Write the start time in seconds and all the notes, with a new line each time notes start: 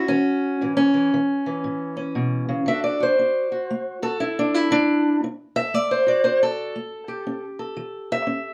Already playing: F#4
0.08 E3 C#4
0.61 A2 E3
0.77 C#4
0.94 E3
1.14 E3
1.46 E3
1.64 A2
1.97 C#4
2.15 B2
2.49 C#3
2.66 D3 D4 F#4 A4 E5
2.84 D5
3.00 F#4 C5
3.19 D4
3.52 F#4
3.71 A3
4.02 F#4 A4
4.20 D4 E4
4.39 D4
4.54 E4
4.71 D3 D4
5.24 D4
5.56 A4 E5
5.74 A3 D5
5.91 C5
6.07 F#4 D5
6.24 D4 C5
6.43 A4
6.76 A3
7.08 G4
7.27 C#4
7.59 A4
7.77 E3
8.12 E5
8.27 C#4